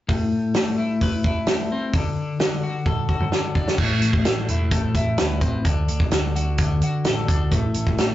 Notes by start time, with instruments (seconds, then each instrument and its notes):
0.09 clean electric guitar A2, kick, open hi-hat
0.54 clean electric guitar A3, snare, open hi-hat
0.78 clean electric guitar E4
1.01 clean electric guitar B4, kick, open hi-hat
1.24 clean electric guitar E4, kick
1.47 clean electric guitar A3, snare, open hi-hat
1.72 clean electric guitar C4
1.93 clean electric guitar D3, kick, open hi-hat
2.40 clean electric guitar D3, snare, open hi-hat
2.63 clean electric guitar F#4
2.86 clean electric guitar A4, kick, high tom
3.09 clean electric guitar F#4, kick
3.20 mid tom
3.32 clean electric guitar D3, snare
3.55 clean electric guitar D4, kick
3.68 snare
3.78 picked electric bass A1, clean electric guitar A2, kick, crash
4.02 picked electric bass A1, closed hi-hat
4.13 kick
4.25 picked electric bass A1, clean electric guitar A3, snare, closed hi-hat
4.48 picked electric bass E1, clean electric guitar E4, closed hi-hat
4.71 picked electric bass A1, clean electric guitar A3, kick, closed hi-hat
4.94 picked electric bass A1, clean electric guitar E4, kick, closed hi-hat
5.18 picked electric bass D2, clean electric guitar B4, snare, closed hi-hat
5.41 picked electric bass A1, clean electric guitar C4, kick, closed hi-hat
5.65 picked electric bass D2, clean electric guitar D3, kick, closed hi-hat
5.88 picked electric bass D2, closed hi-hat
6.00 kick
6.11 picked electric bass D2, clean electric guitar D3, snare, closed hi-hat
6.36 picked electric bass D2, clean electric guitar F#4, closed hi-hat
6.58 picked electric bass D2, clean electric guitar D3, kick, closed hi-hat
6.82 picked electric bass D3, clean electric guitar F#4, closed hi-hat
7.05 picked electric bass A1, clean electric guitar A4, snare, closed hi-hat
7.28 picked electric bass D2, clean electric guitar D4, kick, closed hi-hat
7.51 picked electric bass A1, clean electric guitar A2, kick, closed hi-hat
7.74 picked electric bass A1, closed hi-hat
7.87 kick
7.98 picked electric bass A1, clean electric guitar A3, snare, closed hi-hat